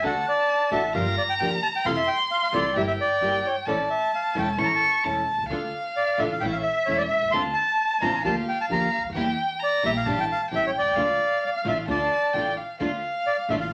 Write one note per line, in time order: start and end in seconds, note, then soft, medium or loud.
0.03 0.23 D2 medium
0.03 0.13 D3 medium
0.03 0.13 A3 medium
0.03 0.23 D4 medium
0.03 0.13 D4 medium
0.03 0.23 F#4 medium
0.03 0.13 F#4 medium
0.03 0.23 A4 medium
0.03 0.26 F#5 medium
0.03 0.95 A5 medium
0.28 0.70 D5 medium
0.71 0.91 A1 medium
0.71 0.80 D3 medium
0.71 0.81 A3 medium
0.71 0.91 D4 medium
0.71 0.81 D4 medium
0.71 0.91 F#4 medium
0.71 0.81 F#4 medium
0.71 0.91 A4 medium
0.71 0.93 E5 medium
0.93 1.14 G1 medium
0.93 1.03 D3 medium
0.93 1.04 F3 medium
0.93 1.04 A#3 medium
0.93 1.04 D4 medium
0.93 1.14 F4 medium
0.93 1.14 G4 medium
0.93 1.04 G4 medium
0.93 1.14 A#4 medium
0.93 1.16 F5 medium
0.93 1.87 A#5 medium
1.18 1.23 D5 medium
1.29 1.34 G5 medium
1.39 1.59 D2 medium
1.39 1.57 D3 medium
1.39 1.57 F3 medium
1.39 1.58 A#3 medium
1.39 1.58 D4 medium
1.39 1.59 F4 soft
1.39 1.59 G4 soft
1.39 1.58 G4 medium
1.39 1.59 A#4 soft
1.39 1.50 G5 medium
1.62 1.68 A5 medium
1.76 1.86 G5 medium
1.85 2.04 F2 medium
1.85 1.95 C3 medium
1.85 1.95 E3 medium
1.85 1.95 A3 medium
1.85 1.95 C4 medium
1.85 2.04 E4 medium
1.85 2.04 F4 medium
1.85 1.95 F4 medium
1.85 2.04 A4 medium
1.85 1.96 F5 medium
1.85 2.74 C6 medium
1.97 2.09 E5 medium
2.07 2.18 G5 medium
2.31 2.42 F5 medium
2.43 2.48 F5 medium
2.52 2.72 C2 medium
2.52 2.62 C3 medium
2.52 2.63 E3 medium
2.52 2.63 A3 medium
2.52 2.63 C4 medium
2.52 2.72 E4 medium
2.52 2.72 F4 medium
2.52 2.63 F4 medium
2.52 2.72 A4 medium
2.52 2.77 D5 medium
2.75 2.95 G1 medium
2.75 2.85 G3 medium
2.75 2.85 A#3 medium
2.75 2.95 E4 medium
2.75 2.85 E4 medium
2.75 2.95 G4 medium
2.75 2.86 G4 medium
2.75 2.96 A#4 medium
2.75 2.82 E5 medium
2.75 3.67 G5 medium
2.87 2.93 E5 medium
3.01 3.47 D5 medium
3.21 3.41 G1 medium
3.21 3.39 G3 soft
3.21 3.39 A#3 medium
3.21 3.41 E4 soft
3.21 3.39 E4 medium
3.21 3.41 G4 soft
3.21 3.39 G4 medium
3.21 3.41 A#4 medium
3.46 3.56 C#5 medium
3.66 3.86 A1 medium
3.66 3.77 E3 medium
3.66 3.77 A3 medium
3.66 3.86 C#4 medium
3.66 3.77 C#4 medium
3.66 3.86 E4 medium
3.66 3.77 E4 medium
3.66 3.86 A4 medium
3.66 3.89 D5 medium
3.66 4.60 A5 medium
3.90 4.11 E5 medium
4.15 4.35 F5 medium
4.35 4.55 E1 medium
4.35 4.45 E3 medium
4.35 4.45 A3 medium
4.35 4.55 C#4 medium
4.35 4.45 C#4 medium
4.35 4.55 E4 medium
4.35 4.45 E4 medium
4.35 4.55 A4 medium
4.39 4.49 G5 medium
4.58 4.78 A1 medium
4.58 4.67 E3 medium
4.58 4.68 A3 medium
4.58 4.78 C#4 medium
4.58 4.68 C#4 medium
4.58 4.78 E4 medium
4.58 4.68 E4 medium
4.58 4.78 A4 medium
4.58 5.06 C#6 medium
4.63 4.67 A5 medium
4.63 4.72 A#5 medium
4.75 5.04 A5 medium
5.04 5.24 E1 medium
5.04 5.22 E3 medium
5.04 5.22 A3 soft
5.04 5.24 C#4 soft
5.04 5.22 C#4 medium
5.04 5.24 E4 soft
5.04 5.22 E4 medium
5.04 5.24 A4 soft
5.04 5.49 A5 medium
5.33 5.38 B1 soft
5.38 5.43 C2 soft
5.44 5.49 C#2 medium
5.49 5.70 D2 medium
5.49 5.60 D3 medium
5.49 5.60 A3 medium
5.49 5.70 D4 medium
5.49 5.61 D4 medium
5.49 5.70 F4 soft
5.49 5.61 F4 medium
5.49 5.70 A4 medium
5.49 6.38 F5 medium
5.96 6.20 D5 medium
6.18 6.38 A1 medium
6.18 6.28 D3 medium
6.18 6.29 A3 medium
6.18 6.39 D4 medium
6.18 6.29 D4 medium
6.18 6.38 F4 medium
6.18 6.29 F4 medium
6.18 6.39 A4 medium
6.18 6.24 E5 medium
6.32 6.44 F5 medium
6.40 6.61 A1 medium
6.40 6.51 E3 medium
6.40 6.52 A3 medium
6.40 6.61 C#4 medium
6.40 6.52 C#4 medium
6.40 6.61 E4 medium
6.40 6.52 E4 medium
6.40 6.62 A4 medium
6.40 7.34 E5 medium
6.40 6.46 G5 medium
6.52 6.58 F5 medium
6.63 6.88 E5 medium
6.86 7.07 E1 medium
6.86 7.05 E3 medium
6.86 7.05 A3 medium
6.86 7.07 C#4 soft
6.86 7.05 C#4 medium
6.86 7.07 E4 soft
6.86 7.06 E4 medium
6.86 7.07 A4 soft
6.86 6.98 C#5 medium
6.97 7.03 D5 medium
7.09 7.31 E5 medium
7.17 7.22 B1 soft
7.22 7.28 C2 medium
7.28 7.33 C#2 medium
7.28 7.42 C6 medium
7.33 7.53 D2 medium
7.33 7.43 D3 medium
7.33 7.43 A3 medium
7.33 7.53 C4 medium
7.33 7.43 C4 medium
7.33 7.53 D4 medium
7.33 7.53 F4 medium
7.33 7.43 F4 medium
7.33 8.23 A5 medium
7.54 7.98 A5 medium
8.01 8.21 A1 medium
8.01 8.11 D3 medium
8.01 8.11 A3 medium
8.01 8.21 C4 medium
8.01 8.11 C4 medium
8.01 8.21 D4 medium
8.01 8.21 F4 medium
8.01 8.12 F4 medium
8.01 8.23 A#5 medium
8.24 8.44 D2 medium
8.24 8.33 D3 medium
8.24 8.34 F3 medium
8.24 8.44 A#3 medium
8.24 8.34 A#3 medium
8.24 8.34 D4 medium
8.24 8.44 F4 medium
8.24 8.44 G4 medium
8.24 8.34 G4 medium
8.24 9.11 F5 medium
8.24 8.35 A5 medium
8.49 8.59 G5 medium
8.61 8.65 A5 medium
8.69 8.90 D2 medium
8.69 8.87 D3 medium
8.69 8.87 F3 medium
8.69 8.87 A#3 medium
8.69 8.89 A#3 soft
8.69 8.87 D4 medium
8.69 8.89 F4 soft
8.69 8.90 G4 medium
8.69 8.87 G4 medium
8.69 9.03 A#5 medium
8.99 9.04 C#2 soft
9.04 9.09 D2 medium
9.10 9.15 D#2 medium
9.15 9.35 E2 medium
9.15 9.24 E3 medium
9.15 9.25 G3 medium
9.15 9.35 A#3 medium
9.15 9.35 E4 medium
9.15 9.25 E4 medium
9.15 9.35 G4 medium
9.15 9.61 G5 medium
9.60 9.83 D5 medium
9.60 10.07 A#5 medium
9.83 10.03 A#1 medium
9.83 9.93 E3 medium
9.83 9.93 G3 medium
9.83 10.03 A#3 medium
9.83 10.03 E4 medium
9.83 9.93 E4 medium
9.83 10.03 G4 medium
9.83 9.90 E5 medium
9.97 10.19 F5 medium
10.05 10.25 A1 medium
10.05 10.15 D3 medium
10.05 10.16 G3 medium
10.05 10.26 A3 medium
10.05 10.25 D4 medium
10.05 10.16 D4 medium
10.05 10.16 E4 medium
10.05 10.26 G4 medium
10.05 10.50 A5 medium
10.20 10.25 G5 medium
10.32 10.42 F5 medium
10.51 10.71 A1 medium
10.51 10.69 E3 soft
10.51 10.69 G3 medium
10.51 10.71 A3 soft
10.51 10.71 C#4 soft
10.51 10.69 C#4 medium
10.51 10.69 E4 medium
10.51 10.71 G4 medium
10.51 10.98 G5 medium
10.55 10.66 E5 medium
10.67 10.71 C#5 medium
10.78 10.85 B1 soft
10.78 11.44 D5 medium
10.86 10.91 C2 soft
10.91 10.97 C#2 medium
10.96 11.17 D2 medium
10.96 11.06 D3 medium
10.96 11.06 A3 medium
10.96 11.16 A3 medium
10.96 11.16 D4 medium
10.96 11.07 D4 medium
10.96 11.16 F4 medium
10.96 11.07 F4 medium
10.96 11.88 F5 medium
11.46 11.50 D5 medium
11.57 11.61 F5 medium
11.65 11.85 A1 medium
11.65 11.74 D3 medium
11.65 11.85 A3 medium
11.65 11.75 A3 medium
11.65 11.85 D4 medium
11.65 11.75 D4 medium
11.65 11.85 F4 medium
11.65 11.75 F4 medium
11.65 11.78 E5 medium
11.87 12.08 D2 medium
11.87 11.97 D3 medium
11.87 12.07 A3 medium
11.87 11.97 A3 medium
11.87 12.07 D4 medium
11.87 11.98 D4 medium
11.87 12.08 F4 medium
11.87 11.98 F4 medium
11.87 12.55 D5 medium
11.87 12.35 A5 medium
12.34 12.54 A1 medium
12.34 12.52 D3 medium
12.34 12.54 A3 soft
12.34 12.52 A3 medium
12.34 12.54 D4 soft
12.34 12.52 D4 medium
12.34 12.54 F4 medium
12.34 12.53 F4 medium
12.34 12.59 G5 medium
12.57 12.80 F5 medium
12.80 13.00 D2 medium
12.80 12.90 D3 medium
12.80 13.00 A3 medium
12.80 12.90 A3 medium
12.80 13.00 D4 medium
12.80 12.90 D4 medium
12.80 13.00 F4 medium
12.80 12.91 F4 medium
12.80 13.73 F5 medium
13.27 13.37 D5 medium
13.49 13.68 A1 medium
13.49 13.59 D3 medium
13.49 13.69 A3 medium
13.49 13.59 A3 medium
13.49 13.69 D4 medium
13.49 13.59 D4 medium
13.49 13.69 F4 medium
13.49 13.59 F4 medium
13.49 13.55 E5 medium
13.61 13.71 F5 medium